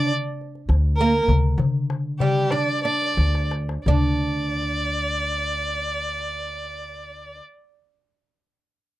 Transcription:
Already playing: upright bass D3, oud D4, violin D5
0.41 darbuka ka
0.55 darbuka ka
0.69 upright bass D2, darbuka tek
0.97 oud A#3, violin A#4, darbuka ka
1.28 upright bass D2, darbuka dum
1.58 upright bass D3, darbuka dum
1.90 darbuka tek
2.20 oud G3, violin G4, darbuka dum
2.50 oud D4, violin D5
2.85 oud D4, violin D5, darbuka ka
3.01 darbuka ka
3.17 upright bass D2, darbuka tek
3.35 darbuka ka
3.51 darbuka tek
3.69 darbuka ka
3.86 upright bass D2, oud D4, violin D5, darbuka dum

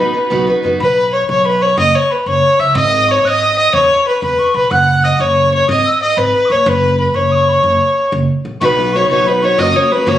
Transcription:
Already playing: steel-string acoustic guitar B3, fiddle B4, tin whistle B5
0.00 steel-string acoustic guitar D#4 F#4 B4
0.13 steel-string acoustic guitar B3 D#4 F#4 B4
0.30 upright bass B1, steel-string acoustic guitar B3 D#4 F#4 B4
0.47 steel-string acoustic guitar B3 D#4 F#4 B4
0.63 upright bass F#2, steel-string acoustic guitar B3 D#4 F#4 B4
0.80 upright bass B1, fiddle B4, tin whistle B5
0.97 tin whistle B5
1.13 fiddle C#5, tin whistle C#6
1.29 upright bass B1, fiddle C#5, tin whistle C#6
1.46 fiddle B4, tin whistle B5
1.61 fiddle C#5, tin whistle C#6
1.77 upright bass F#1, fiddle D#5, tin whistle D#6
1.94 fiddle C#5, tin whistle C#6
2.11 fiddle B4, tin whistle B5
2.26 upright bass F#1, fiddle C#5, tin whistle C#6
2.59 upright bass C#2, fiddle E5, tin whistle E6
2.75 upright bass G#1, fiddle D#5, tin whistle D#6
2.93 tin whistle D#6
3.08 fiddle C#5, tin whistle C#6
3.24 upright bass G#1, fiddle D#5, tin whistle F#6
3.29 tin whistle D#6
3.57 fiddle D#5, tin whistle D#6
3.73 upright bass E1, fiddle C#5, tin whistle C#6
4.07 fiddle B4, tin whistle B5
4.22 upright bass E1, fiddle B4, tin whistle B5
4.39 tin whistle C#6
4.54 upright bass B1, fiddle B4, tin whistle B5
4.71 upright bass F#1, fiddle F#5, tin whistle F#6
5.04 fiddle D#5, tin whistle D#6
5.20 upright bass F#1, fiddle C#5, tin whistle C#6
5.53 fiddle C#5, tin whistle C#6
5.68 upright bass G#1, fiddle D#5, tin whistle D#6
5.85 tin whistle E6
6.02 fiddle D#5, tin whistle D#6
6.17 upright bass G#1, fiddle B4, tin whistle B5
6.45 tin whistle C#6 D#6
6.50 upright bass D#2, fiddle C#5
6.66 upright bass F#1, fiddle B4, tin whistle B5 C#6
6.99 fiddle B4, tin whistle B5
7.14 upright bass F#1, fiddle C#5, tin whistle C#6
7.32 tin whistle C#6 D#6
7.49 tin whistle B5 C#6
7.63 upright bass F#1
8.12 upright bass F#1
8.45 upright bass A#1
8.61 upright bass B1, steel-string acoustic guitar B3 D#4 F#4 B4, fiddle B4, tin whistle C#6
8.65 tin whistle B5
8.77 steel-string acoustic guitar B3 D#4 F#4 B4
8.93 steel-string acoustic guitar B3 D#4 F#4, fiddle C#5, tin whistle C#6
8.97 steel-string acoustic guitar B4
9.10 upright bass B1, steel-string acoustic guitar B3 D#4 F#4 B4, fiddle C#5, tin whistle C#6
9.26 steel-string acoustic guitar B3 D#4 F#4 B4, fiddle B4, tin whistle B5
9.42 steel-string acoustic guitar B3 D#4 F#4 B4, fiddle C#5, tin whistle C#6
9.58 upright bass F#1, steel-string acoustic guitar F#3 A#3 C#4 F#4, fiddle D#5, tin whistle F#6
9.62 tin whistle D#6
9.74 steel-string acoustic guitar F#3 A#3 C#4 F#4, fiddle C#5
9.90 steel-string acoustic guitar F#3 A#3 C#4 F#4, fiddle B4, tin whistle B5
10.06 upright bass F#1, steel-string acoustic guitar F#3 A#3 C#4 F#4, fiddle C#5, tin whistle D#6
10.11 tin whistle C#6

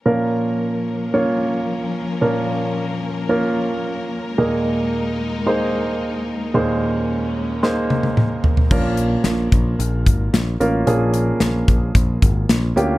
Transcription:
0.03 grand piano A#2 F3 A#3 C#4 F4 A#4, string section F3 A#3 C#4 A#4
1.14 grand piano A#3 C#4 F4 C#5
2.21 grand piano A#2 F3 A#3 C#4 F4 A#4
3.29 grand piano A#3 C#4 F4 A#4
4.38 grand piano D#2 A#2 A#3 D#4 G#4 A#4, string section G#3 D#4
5.46 grand piano A#3 D#4 G#4 C5
6.54 grand piano D#2 A#2 A#3 D#4 G#4 C5, string section C#4
7.63 grand piano A#3 D#4 G#4 C5, snare
7.90 high tom
8.03 high tom
8.17 mid tom
8.44 floor tom
8.57 floor tom
8.71 picked electric bass A#1, grand piano A#2 F3 A#3 C#4 F4 A#4, kick, crash
8.97 closed hi-hat
9.24 picked electric bass A#1, snare, closed hi-hat
9.52 picked electric bass A#1, kick, closed hi-hat
9.79 picked electric bass A#1, closed hi-hat
10.07 picked electric bass G#1, kick, closed hi-hat
10.34 picked electric bass A#1, snare, closed hi-hat
10.60 picked electric bass A1, grand piano A#3 C#4 F4 A#4, closed hi-hat
10.87 picked electric bass A#1, grand piano A#2 F3 A#3 C#4 F4 G#4, closed hi-hat
11.14 closed hi-hat
11.40 picked electric bass A#1, snare, closed hi-hat
11.68 picked electric bass A#1, kick, closed hi-hat
11.95 picked electric bass A#1, kick, closed hi-hat
12.22 picked electric bass G#1, kick, closed hi-hat
12.49 picked electric bass A#1, snare, closed hi-hat
12.76 picked electric bass D2, grand piano A#3 C#4 F4 G4, closed hi-hat

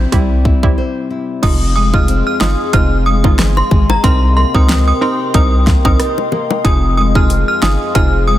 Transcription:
Already playing: nylon-string guitar C3 C4 E4 C5
0.12 sub bass C2, synth pluck G3 C4 E4, nylon-string guitar G3, kick, closed hi-hat
0.45 nylon-string guitar E4, kick
0.63 sub bass C2, synth pluck G3 C4 E4, kick
0.78 nylon-string guitar C5
1.10 nylon-string guitar E4
1.43 sub bass F1, nylon-string guitar F2, synth pluck G#3 D#4 F4, ambient pad G#4 D#5 F5 C6, synth bell D#6, kick, closed hi-hat, crash, high bongo
1.76 nylon-string guitar G#3, synth bell D#6
1.94 synth pluck G#3 D#4 F4, synth bell F6, kick
2.08 nylon-string guitar C4, closed hi-hat
2.27 synth bell F6
2.41 sub bass G1, synth pluck G#3 D#4 F4, nylon-string guitar G#4, synth bell D#6, snare
2.73 sub bass F1, synth pluck G#3 D#4 F4, nylon-string guitar C4, synth bell F6, kick, closed hi-hat, high bongo
3.06 nylon-string guitar G#3, synth bell D#6
3.24 sub bass G1, synth pluck G#3 D#4 F4, kick, high bongo
3.39 nylon-string guitar G#4, cross-stick, snare, closed hi-hat
3.57 synth bell C6, high bongo
3.71 sub bass G#1, nylon-string guitar G#3, kick, low bongo
3.90 synth bell A#5, high bongo
4.04 sub bass C2, nylon-string guitar C3, synth pluck C4 D#4 A#4, ambient pad A#4 G5, synth bell C6, kick, closed hi-hat, high bongo
4.37 nylon-string guitar A#3, synth bell C6
4.54 sub bass C#2, synth pluck C4 D#4 A#4, synth bell D#6, kick
4.69 nylon-string guitar C4, snare, closed hi-hat
4.88 synth bell D#6
5.01 synth pluck C4 D#4 A#4, nylon-string guitar G4, synth bell C6
5.34 sub bass C2, synth pluck C4 D#4 A#4, nylon-string guitar C4, synth bell D#6, kick, closed hi-hat, high bongo
5.67 nylon-string guitar A#3, kick, snare
5.85 sub bass A#1, synth pluck C4 D#4 A#4, synth bell D#6, kick, high bongo
6.00 nylon-string guitar G4, cross-stick, closed hi-hat
6.18 high bongo
6.32 nylon-string guitar A#3, low bongo
6.51 high bongo
6.64 sub bass F1, nylon-string guitar F2, synth pluck D#4 F4 G#4, ambient pad G#4 F5, synth bell D#6, kick, closed hi-hat, high bongo
6.97 nylon-string guitar G#3, synth bell D#6
7.15 synth pluck D#4 F4 G#4, synth bell F6, kick
7.30 nylon-string guitar C4, closed hi-hat
7.48 synth bell F6
7.62 sub bass G1, synth pluck D#4 F4 G#4, nylon-string guitar G#4, synth bell D#6, snare
7.95 sub bass F1, nylon-string guitar C4, synth pluck D#4 F4 G#4, synth bell F6, kick, closed hi-hat, high bongo
8.28 nylon-string guitar G#3, synth bell D#6

